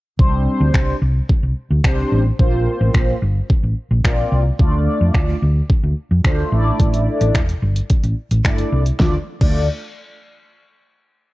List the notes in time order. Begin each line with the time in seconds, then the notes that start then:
0.19 C2 G3 C4 D4 C5, kick
0.60 D2
0.74 finger snap, kick
1.02 C2
1.29 kick
1.43 C2
1.71 D2
1.84 G3 C4 D4 C5, finger snap, kick
2.12 A1
2.39 A#1 A#3 C4 F4 C5, kick
2.81 A1
2.94 A#1, finger snap, kick
3.22 G1
3.50 kick
3.63 A1
3.91 A#1
4.04 A#3 C4 F4 D5, finger snap, kick
4.32 C2
4.59 D2 A3 D4 F4 D5, kick
5.01 F2
5.14 D2, finger snap, kick
5.42 D2
5.70 kick
5.83 D2
6.11 F2
6.24 D2 A3 D4 F4 C5, finger snap, kick
6.52 A1 A3 D4 E4 D5
6.80 A1, kick, closed hi-hat
6.94 closed hi-hat
7.21 A1, closed hi-hat
7.35 finger snap, kick, closed hi-hat
7.49 closed hi-hat
7.62 G1
7.76 closed hi-hat
7.90 kick, closed hi-hat
8.04 A1, closed hi-hat
8.31 A1, closed hi-hat
8.45 A3 D4 E4 D5, finger snap, kick, closed hi-hat
8.58 closed hi-hat
8.72 C2
8.86 closed hi-hat
9.00 D2 A3 D4 F4 D5, kick, snare
9.41 D2 A3 D4 F4 D5, kick, crash